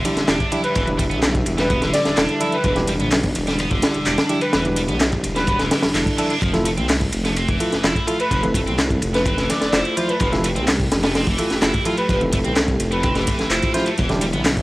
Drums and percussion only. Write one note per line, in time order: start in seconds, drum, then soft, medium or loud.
0.05 closed hi-hat medium
0.05 ride medium
0.05 muted conga medium
0.05 high conga medium
0.17 snare soft
0.17 closed hi-hat soft
0.28 snare loud
0.28 clap loud
0.28 closed hi-hat soft
0.28 ride medium
0.40 kick medium
0.40 closed hi-hat soft
0.52 closed hi-hat medium
0.52 ride medium
0.52 muted conga medium
0.52 high conga medium
0.64 closed hi-hat soft
0.64 ride soft
0.75 kick loud
0.75 closed hi-hat soft
0.75 ride loud
0.87 closed hi-hat soft
0.87 muted conga medium
0.87 high conga medium
0.87 low conga medium
0.99 kick loud
0.99 closed hi-hat medium
0.99 ride medium
1.10 closed hi-hat soft
1.10 low conga medium
1.23 snare loud
1.23 clap loud
1.23 closed hi-hat soft
1.23 ride medium
1.35 kick medium
1.35 closed hi-hat soft
1.35 muted conga medium
1.46 closed hi-hat medium
1.46 ride medium
1.58 snare soft
1.58 closed hi-hat soft
1.70 kick loud
1.70 closed hi-hat soft
1.70 ride medium
1.70 muted conga medium
1.82 snare soft
1.82 closed hi-hat soft
1.93 snare soft
1.93 closed hi-hat medium
1.93 ride medium
1.93 high conga medium
1.93 low conga medium
2.05 snare soft
2.05 closed hi-hat soft
2.16 snare loud
2.16 clap loud
2.16 closed hi-hat soft
2.16 ride loud
2.16 muted conga medium
2.29 closed hi-hat soft
2.41 closed hi-hat medium
2.41 ride medium
2.41 high conga medium
2.52 closed hi-hat soft
2.52 muted conga medium
2.64 kick loud
2.64 closed hi-hat soft
2.64 ride medium
2.76 snare soft
2.76 closed hi-hat soft
2.76 high conga medium
2.76 low conga medium
2.87 closed hi-hat medium
2.87 ride medium
2.99 closed hi-hat soft
2.99 muted conga medium
2.99 low conga medium
3.11 snare loud
3.11 clap loud
3.11 closed hi-hat soft
3.11 open hi-hat medium
3.23 kick loud
3.23 closed hi-hat soft
3.35 closed hi-hat medium
3.35 ride medium
3.35 muted conga medium
3.47 snare soft
3.47 closed hi-hat soft
3.59 closed hi-hat soft
3.59 ride medium
3.71 kick medium
3.71 closed hi-hat soft
3.82 snare loud
3.82 closed hi-hat medium
3.82 ride medium
3.82 muted conga medium
3.82 high conga medium
3.94 closed hi-hat soft
4.06 clap loud
4.06 closed hi-hat soft
4.06 ride medium
4.18 snare loud
4.18 closed hi-hat soft
4.18 ride medium
4.18 muted conga medium
4.29 closed hi-hat medium
4.29 ride medium
4.29 high conga medium
4.41 closed hi-hat soft
4.41 ride medium
4.53 snare loud
4.53 closed hi-hat soft
4.53 ride medium
4.65 closed hi-hat soft
4.65 muted conga medium
4.65 high conga medium
4.65 low conga medium
4.76 closed hi-hat medium
4.76 ride medium
4.87 closed hi-hat soft
4.87 low conga medium
5.00 snare loud
5.00 clap loud
5.00 closed hi-hat soft
5.00 ride medium
5.00 muted conga medium
5.12 kick loud
5.12 closed hi-hat soft
5.23 closed hi-hat medium
5.23 ride medium
5.36 snare soft
5.36 closed hi-hat soft
5.47 kick loud
5.47 closed hi-hat soft
5.47 ride medium
5.47 muted conga medium
5.59 snare soft
5.59 closed hi-hat soft
5.70 snare medium
5.70 closed hi-hat medium
5.70 open hi-hat medium
5.70 ride medium
5.70 high conga medium
5.70 low conga medium
5.83 snare loud
5.83 closed hi-hat soft
5.83 open hi-hat medium
5.83 muted conga loud
5.94 clap loud
5.94 closed hi-hat soft
5.94 ride medium
6.06 kick medium
6.06 closed hi-hat soft
6.18 closed hi-hat medium
6.18 ride medium
6.18 high conga medium
6.30 closed hi-hat soft
6.30 muted conga soft
6.41 kick loud
6.41 closed hi-hat soft
6.41 ride medium
6.41 muted conga medium
6.53 snare soft
6.53 closed hi-hat soft
6.53 high conga medium
6.53 low conga medium
6.65 closed hi-hat medium
6.65 ride medium
6.77 closed hi-hat soft
6.77 muted conga medium
6.77 low conga medium
6.89 snare loud
6.89 clap loud
6.89 closed hi-hat soft
6.89 open hi-hat medium
7.01 kick medium
7.01 closed hi-hat soft
7.12 closed hi-hat medium
7.12 ride medium
7.24 snare soft
7.24 closed hi-hat soft
7.24 muted conga medium
7.36 closed hi-hat soft
7.36 ride medium
7.48 kick medium
7.48 closed hi-hat soft
7.60 closed hi-hat medium
7.60 ride medium
7.60 muted conga medium
7.60 high conga medium
7.72 snare soft
7.72 closed hi-hat soft
7.84 snare loud
7.84 clap loud
7.84 closed hi-hat soft
7.84 ride medium
7.96 kick loud
7.96 closed hi-hat soft
8.07 closed hi-hat medium
8.07 ride medium
8.07 muted conga medium
8.07 high conga medium
8.20 closed hi-hat soft
8.20 ride soft
8.31 kick loud
8.31 closed hi-hat soft
8.31 ride medium
8.43 closed hi-hat soft
8.43 muted conga medium
8.43 high conga medium
8.43 low conga medium
8.54 kick medium
8.54 closed hi-hat medium
8.54 ride medium
8.67 closed hi-hat soft
8.67 low conga medium
8.78 snare loud
8.78 clap loud
8.78 closed hi-hat soft
8.78 ride loud
8.90 kick loud
8.90 closed hi-hat soft
8.90 muted conga soft
9.02 closed hi-hat medium
9.02 ride medium
9.14 snare soft
9.14 closed hi-hat soft
9.25 kick loud
9.25 closed hi-hat soft
9.25 ride medium
9.25 muted conga medium
9.38 snare soft
9.38 closed hi-hat soft
9.49 snare soft
9.49 closed hi-hat medium
9.49 ride medium
9.49 high conga medium
9.49 low conga medium
9.61 snare soft
9.61 closed hi-hat soft
9.72 snare loud
9.72 clap loud
9.72 closed hi-hat soft
9.72 ride medium
9.72 muted conga medium
9.85 closed hi-hat soft
9.97 closed hi-hat medium
9.97 ride medium
9.97 high conga loud
10.08 closed hi-hat soft
10.08 muted conga medium
10.20 kick loud
10.20 closed hi-hat soft
10.20 ride medium
10.32 snare soft
10.32 closed hi-hat soft
10.32 high conga medium
10.32 low conga medium
10.44 closed hi-hat medium
10.44 ride medium
10.56 closed hi-hat soft
10.56 muted conga soft
10.56 low conga medium
10.67 snare loud
10.67 clap loud
10.67 closed hi-hat soft
10.67 open hi-hat medium
10.80 kick loud
10.80 closed hi-hat soft
10.91 snare loud
10.91 closed hi-hat medium
10.91 open hi-hat medium
10.91 ride medium
10.91 muted conga medium
11.03 snare loud
11.03 closed hi-hat soft
11.03 open hi-hat medium
11.15 snare loud
11.15 closed hi-hat soft
11.15 open hi-hat medium
11.27 kick medium
11.27 closed hi-hat soft
11.38 closed hi-hat medium
11.38 ride medium
11.38 muted conga medium
11.38 high conga medium
11.50 snare soft
11.50 closed hi-hat soft
11.62 snare loud
11.62 clap loud
11.62 closed hi-hat soft
11.62 ride loud
11.74 kick loud
11.74 closed hi-hat soft
11.74 muted conga medium
11.85 closed hi-hat medium
11.85 ride medium
11.85 high conga loud
11.97 closed hi-hat soft
11.97 ride soft
12.09 kick loud
12.09 closed hi-hat soft
12.09 ride medium
12.21 closed hi-hat soft
12.21 muted conga soft
12.21 high conga medium
12.21 low conga medium
12.32 kick medium
12.32 closed hi-hat medium
12.32 ride medium
12.44 closed hi-hat soft
12.44 low conga medium
12.56 snare loud
12.56 clap loud
12.56 closed hi-hat soft
12.56 ride medium
12.56 muted conga medium
12.68 kick medium
12.68 closed hi-hat soft
12.80 closed hi-hat medium
12.80 ride medium
12.92 closed hi-hat soft
13.03 kick loud
13.03 closed hi-hat soft
13.03 ride medium
13.03 muted conga medium
13.15 snare soft
13.15 closed hi-hat soft
13.27 kick loud
13.27 closed hi-hat medium
13.27 ride medium
13.27 high conga medium
13.27 low conga medium
13.39 snare soft
13.39 closed hi-hat soft
13.39 muted conga medium
13.51 clap loud
13.51 closed hi-hat soft
13.51 ride medium
13.62 kick medium
13.62 closed hi-hat soft
13.62 ride medium
13.74 snare soft
13.74 closed hi-hat medium
13.74 ride medium
13.74 high conga medium
13.86 closed hi-hat soft
13.86 ride medium
13.86 muted conga medium
13.98 kick loud
13.98 closed hi-hat soft
13.98 ride medium
13.98 muted conga medium
14.09 snare soft
14.09 closed hi-hat soft
14.09 high conga medium
14.09 low conga medium
14.21 closed hi-hat medium
14.21 ride medium
14.33 closed hi-hat soft
14.33 muted conga medium
14.33 low conga medium
14.45 snare loud
14.45 clap loud
14.45 closed hi-hat soft
14.45 open hi-hat medium
14.57 kick loud
14.57 closed hi-hat soft